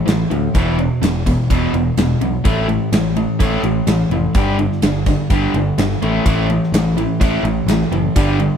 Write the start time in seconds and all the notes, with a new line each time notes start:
0.06 A1 A2 E3, snare, ride
0.30 D2 A2 E3, ride
0.54 E1 E2 B2 E3, kick, ride
0.78 E2 B2, ride
1.02 E1 E2 B2, snare, ride
1.26 E2 B2, kick, ride
1.50 E1 E2 B2 E3, kick, ride
1.73 E1 E2 B2, ride
1.97 E1 E2 B2, snare, ride
2.21 B1 E2 B2, ride
2.44 A1 A2 E3 A3, kick, ride
2.68 A2 E3, ride
2.92 A1 A2 E3, snare, ride
3.16 A2 E3, ride
3.39 A1 A2 E3 A3, kick, ride
3.63 A1 A2 E3, ride
3.87 A1 A2 E3, snare, ride
4.10 F1 A2 E3, ride
4.34 G1 G2 D3 G3, kick, ride
4.59 G2 D3, ride
4.72 snare
4.82 G1 G2 D3, snare, ride
5.06 G2 D3, kick, ride
5.30 G1 G2 D3 G3, kick, ride
5.54 G1 G2 D3, ride
5.78 G1 G2 D3, snare, ride
5.92 snare
6.02 A1 A2 E3 A3, ride
6.25 A1 A2 E3 A3, kick, ride
6.50 A2 E3, ride
6.63 snare
6.72 A1 A2 E3, snare, ride
6.97 A2 E3, ride
7.20 A1 A2 E3 A3, kick, ride
7.43 A1 A2 E3, ride
7.66 A1 A2 E3, snare, ride
7.82 snare
7.92 F#1 A2 E3, ride
8.16 G1 G2 D3 G3, kick, ride
8.40 G2 D3, ride